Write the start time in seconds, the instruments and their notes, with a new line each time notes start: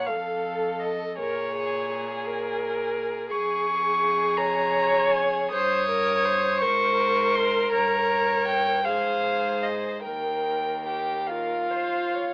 Already playing: cello A#2, viola C#5
0.06 cello F2, violin A4 F5, viola A4
0.80 violin D#5
1.18 cello A#2, violin G#4 C#5, viola A#4
1.56 viola G#4
1.90 viola G#4
2.27 viola A#4
3.30 cello F2, violin G#4 C#6, viola G#4
4.37 viola C#5, violin A#5
5.12 violin G#5
5.52 cello G2, viola C5, violin C#5 D#6
5.91 viola A#4
6.25 viola C5
6.61 cello G#2, viola A#4, violin C5 C#6
7.35 violin C6
7.72 cello G2, violin C#5 A#5
8.48 violin G5
8.84 cello G#2, viola G#4, violin C5 F5
9.63 violin D#5
10.03 cello D#2, viola A#4, violin A#4 G5
10.86 violin G4 G5
11.27 violin F4 F5, viola A#4
11.71 viola C5
12.14 viola C#5